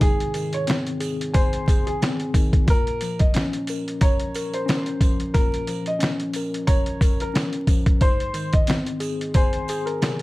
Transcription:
Already playing: tine electric piano C3 D#3 C4 G#4 G#5
0.00 tine electric piano G#2, upright piano G#4, kick, closed hi-hat, sleigh bells
0.20 closed hi-hat
0.34 tine electric piano D#3, closed hi-hat, sleigh bells
0.53 upright piano C#5, closed hi-hat
0.67 tine electric piano C4, snare, closed hi-hat, sleigh bells
0.87 closed hi-hat
1.00 tine electric piano G#4, closed hi-hat, sleigh bells
1.21 closed hi-hat
1.34 upright piano C5, tine electric piano G#5, kick, closed hi-hat, sleigh bells
1.53 closed hi-hat
1.68 tine electric piano G#4, kick, closed hi-hat, sleigh bells
1.87 upright piano G#4, closed hi-hat
2.02 tine electric piano C4, snare, closed hi-hat, sleigh bells
2.20 closed hi-hat
2.34 tine electric piano D#3, kick, closed hi-hat, sleigh bells
2.53 kick, closed hi-hat
2.66 tine electric piano A#2, upright piano A#4, kick, closed hi-hat, sleigh bells
2.87 closed hi-hat
3.01 tine electric piano F3, closed hi-hat, sleigh bells
3.19 upright piano D#5, kick, closed hi-hat
3.34 tine electric piano C#4, snare, closed hi-hat, sleigh bells
3.53 closed hi-hat
3.67 tine electric piano A#4, closed hi-hat, sleigh bells
3.88 closed hi-hat
4.01 upright piano C#5, tine electric piano A#5, kick, closed hi-hat, sleigh bells
4.20 closed hi-hat
4.34 tine electric piano A#4, closed hi-hat, sleigh bells
4.54 upright piano C5, closed hi-hat
4.66 tine electric piano C#4, snare, closed hi-hat, sleigh bells
4.70 snare
4.86 closed hi-hat
5.01 tine electric piano F3, kick, closed hi-hat, sleigh bells
5.20 closed hi-hat
5.34 tine electric piano A#2, upright piano A#4, kick, closed hi-hat, sleigh bells
5.54 closed hi-hat
5.67 tine electric piano F3, closed hi-hat, sleigh bells
5.86 upright piano D#5, closed hi-hat
5.99 tine electric piano C#4, snare, closed hi-hat, sleigh bells
6.04 snare
6.20 closed hi-hat
6.34 tine electric piano A#4, closed hi-hat, sleigh bells
6.54 closed hi-hat
6.67 upright piano C#5, tine electric piano A#5, kick, closed hi-hat, sleigh bells
6.86 closed hi-hat
7.01 tine electric piano A#4, kick, closed hi-hat, sleigh bells
7.20 upright piano A#4, closed hi-hat
7.34 tine electric piano C#4, snare, closed hi-hat, sleigh bells
7.53 closed hi-hat
7.67 tine electric piano F3, kick, closed hi-hat, sleigh bells
7.86 kick, closed hi-hat
8.01 tine electric piano G#2, upright piano C5, kick, closed hi-hat, sleigh bells
8.20 closed hi-hat
8.34 tine electric piano D#3, closed hi-hat, sleigh bells
8.53 upright piano D#5, kick, closed hi-hat
8.67 tine electric piano C4, snare, closed hi-hat, sleigh bells
8.86 closed hi-hat
9.00 tine electric piano G#4, closed hi-hat, sleigh bells
9.21 closed hi-hat
9.34 upright piano C5, tine electric piano G#5, kick, closed hi-hat, sleigh bells
9.53 closed hi-hat
9.68 tine electric piano G#4, closed hi-hat, sleigh bells
9.86 upright piano A#4, closed hi-hat
10.01 tine electric piano C3, snare, closed hi-hat, sleigh bells

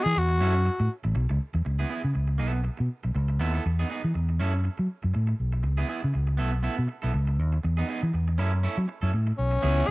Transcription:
0.03 fingered electric bass E3, tenor saxophone G#4, muted clean electric guitar stroke
0.16 fingered electric bass E2, tenor saxophone F#4, muted clean electric guitar stroke
0.29 muted clean electric guitar stroke
0.40 fingered electric bass F#2, clean electric guitar C#4 E4 A4
0.55 muted clean electric guitar stroke
0.65 muted clean electric guitar stroke
0.80 fingered electric bass A2, muted clean electric guitar stroke
1.04 fingered electric bass A1, muted clean electric guitar stroke
1.15 fingered electric bass B1, muted clean electric guitar stroke
1.29 fingered electric bass C#2, muted clean electric guitar stroke
1.54 fingered electric bass E2, muted clean electric guitar stroke
1.65 fingered electric bass C#2, muted clean electric guitar stroke
1.79 clean electric guitar B3 E4 G#4
1.89 clean electric guitar B3 E4 G#4
2.04 fingered electric bass C#3, muted clean electric guitar stroke
2.14 fingered electric bass C#2, muted clean electric guitar stroke
2.28 muted clean electric guitar stroke
2.38 fingered electric bass B1, clean electric guitar B3 E4 A4
2.53 muted clean electric guitar stroke
2.64 muted clean electric guitar stroke
2.77 fingered electric bass B2, muted clean electric guitar stroke
3.03 fingered electric bass B1, muted clean electric guitar stroke
3.15 fingered electric bass C#2, muted clean electric guitar stroke
3.28 muted clean electric guitar stroke
3.39 fingered electric bass D#2, clean electric guitar B3 E4 A4
3.54 clean electric guitar B3 E4 A4
3.65 fingered electric bass E2, muted clean electric guitar stroke
3.79 clean electric guitar B3 D#4 G#4
3.90 clean electric guitar B3 D#4 G#4
4.04 fingered electric bass E3, muted clean electric guitar stroke
4.14 fingered electric bass E2, muted clean electric guitar stroke
4.29 muted clean electric guitar stroke
4.40 fingered electric bass F#2, clean electric guitar C#4 E4 A4
4.54 muted clean electric guitar stroke
4.64 muted clean electric guitar stroke
4.78 fingered electric bass F#3, muted clean electric guitar stroke
5.03 fingered electric bass F#2, muted clean electric guitar stroke
5.14 fingered electric bass A2, muted clean electric guitar stroke
5.27 muted clean electric guitar stroke
5.40 fingered electric bass B1
5.53 muted clean electric guitar stroke
5.63 fingered electric bass C#2, muted clean electric guitar stroke
5.77 clean electric guitar B3 E4 G#4
5.88 clean electric guitar B3 E4 G#4
6.02 fingered electric bass C#3, muted clean electric guitar stroke
6.14 fingered electric bass C#2, muted clean electric guitar stroke
6.27 muted clean electric guitar stroke
6.37 fingered electric bass B1, clean electric guitar B3 E4 A4
6.52 muted clean electric guitar stroke
6.63 clean electric guitar B3 E4 A4
6.76 fingered electric bass B2, muted clean electric guitar stroke
6.87 muted clean electric guitar stroke
7.02 fingered electric bass B1, clean electric guitar B3 E4 A4
7.13 fingered electric bass C#2, muted clean electric guitar stroke
7.27 muted clean electric guitar stroke
7.39 fingered electric bass D#2
7.53 muted clean electric guitar stroke
7.63 fingered electric bass E2, muted clean electric guitar stroke
7.77 clean electric guitar B3 D#4 G#4
7.88 clean electric guitar B3 D#4 G#4
8.03 fingered electric bass E3, muted clean electric guitar stroke
8.14 fingered electric bass E2, muted clean electric guitar stroke
8.28 muted clean electric guitar stroke
8.38 fingered electric bass F#2, clean electric guitar C#4 E4 A4
8.52 muted clean electric guitar stroke
8.63 clean electric guitar C#4 E4 A4
8.78 fingered electric bass F#3, muted clean electric guitar stroke
8.88 muted clean electric guitar stroke
9.02 fingered electric bass F#2, clean electric guitar C#4 E4 A4
9.12 fingered electric bass A2, muted clean electric guitar stroke
9.27 muted clean electric guitar stroke
9.38 fingered electric bass B1, tenor saxophone C#4
9.51 muted clean electric guitar stroke
9.62 fingered electric bass C#2, clean electric guitar B3 E4 G#4
9.87 tenor saxophone G#4, muted clean electric guitar stroke

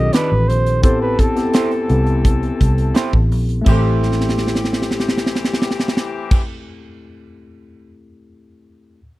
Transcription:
Already playing: horn section D3 D#3 G4, tine electric piano D#3 C4 D4 F4 G4 G#4 A4, flugelhorn D#5
0.13 clean electric guitar D#4 A4 D5, flugelhorn B4, snare, closed hi-hat
0.32 fingered electric bass A1
0.48 fingered electric bass A#1, flugelhorn C5, closed hi-hat
0.67 closed hi-hat
0.82 fingered electric bass A1, horn section E3 C4 A4, tine electric piano B3 C4 E4 G4 A4, flugelhorn C5, kick, closed hi-hat
1.02 flugelhorn B4
1.19 flugelhorn A4, kick, closed hi-hat
1.35 tine electric piano B3 C4 E4 G4 A4, snare, closed hi-hat
1.53 clean electric guitar E4 G4 C5, snare, closed hi-hat
1.71 closed hi-hat
1.88 fingered electric bass C2, tine electric piano B3 C4 E4 G4 A4, closed hi-hat
2.07 closed hi-hat
2.25 kick, closed hi-hat
2.43 closed hi-hat
2.61 fingered electric bass C2, kick, closed hi-hat
2.78 closed hi-hat
2.94 clean electric guitar E4 G4 C5, snare, closed hi-hat
3.13 fingered electric bass A1, kick
3.31 fingered electric bass A#1, open hi-hat
3.49 closed hi-hat
3.61 tine electric piano A3 C4, clean electric guitar E4
3.66 fingered electric bass A1, horn section E3 C4 G4, tine electric piano E4 G4, clean electric guitar G4 C5, kick, crash
3.71 tine electric piano A4
4.03 snare
4.12 snare
4.21 snare
4.29 snare
4.38 snare
4.47 snare
4.55 snare
4.64 snare
4.73 snare
4.82 snare
4.91 snare
5.00 snare
5.08 snare
5.17 snare
5.26 snare
5.35 snare
5.44 snare
5.54 snare
5.62 snare
5.71 snare
5.79 snare
5.88 snare
5.97 snare
6.31 kick, crash

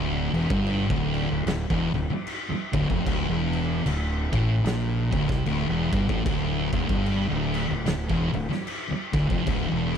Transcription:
Already playing: fingered electric bass D1, distorted electric guitar D2
0.33 fingered electric bass E1, distorted electric guitar E2, crash
0.50 fingered electric bass G1, distorted electric guitar G2, kick
0.66 crash
0.90 fingered electric bass D1, distorted electric guitar D2, kick
1.14 crash
1.30 fingered electric bass D1, distorted electric guitar D2
1.46 fingered electric bass D1, distorted electric guitar D2, snare, crash
1.70 fingered electric bass E1, distorted electric guitar E2, kick
1.94 fingered electric bass D1, distorted electric guitar D2, crash
2.10 muted fingered electric bass stroke, muted distorted electric guitar stroke
2.27 crash
2.50 muted distorted electric guitar stroke, muted fingered electric bass stroke
2.73 fingered electric bass D1, distorted electric guitar D2, kick, crash
2.89 fingered electric bass F1, distorted electric guitar F2, kick
3.06 fingered electric bass D1, distorted electric guitar D2, kick, crash
3.29 fingered electric bass E1, distorted electric guitar E2
3.53 crash
3.85 fingered electric bass D1, distorted electric guitar D2, crash
4.32 fingered electric bass A1, distorted electric guitar A2, kick, crash
4.64 fingered electric bass A#1, distorted electric guitar A#2, snare, crash
5.12 fingered electric bass D1, distorted electric guitar D2, kick, crash
5.29 fingered electric bass C2, distorted electric guitar C3, kick, snare
5.45 fingered electric bass D1, distorted electric guitar D2, crash
5.69 fingered electric bass E1, distorted electric guitar E2
5.92 fingered electric bass G1, distorted electric guitar G2, kick, crash
6.08 fingered electric bass A1, distorted electric guitar A2, kick
6.25 fingered electric bass D1, distorted electric guitar D2, kick, crash
6.72 fingered electric bass E1, distorted electric guitar E2, kick, crash
6.88 fingered electric bass G1, distorted electric guitar G2, kick
7.06 crash
7.29 fingered electric bass D1, distorted electric guitar D2
7.54 crash
7.69 fingered electric bass D1, distorted electric guitar D2
7.86 fingered electric bass D1, distorted electric guitar D2, snare, crash
8.10 fingered electric bass E1, distorted electric guitar E2, kick
8.32 fingered electric bass D1, distorted electric guitar D2, crash
8.49 muted distorted electric guitar stroke, muted fingered electric bass stroke, snare
8.67 crash
8.89 muted distorted electric guitar stroke, muted fingered electric bass stroke
9.13 fingered electric bass D1, distorted electric guitar D2, kick, crash
9.29 fingered electric bass F1, distorted electric guitar F2, kick
9.46 fingered electric bass D1, distorted electric guitar D2, kick, crash
9.69 fingered electric bass E1, distorted electric guitar E2

